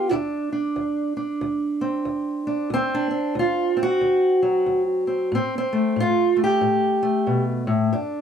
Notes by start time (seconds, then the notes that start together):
Already playing: D3 G4
0.11 D2 D4
0.52 D4
0.76 D2
1.17 D4
1.41 D2
1.81 C4
2.05 D2
2.47 D4
2.70 D2 C4
2.94 D4
3.11 C4
3.35 D2
3.39 F4
3.77 C4
3.83 F#4
4.01 D2
4.42 F#3
4.66 D2
5.07 C4
5.32 A2 C4
5.58 C4
5.73 A3
5.96 A2
6.00 F4
6.36 A3
6.44 G4
6.61 A2
7.03 A3
7.27 B2
7.67 A2
7.93 G2 D4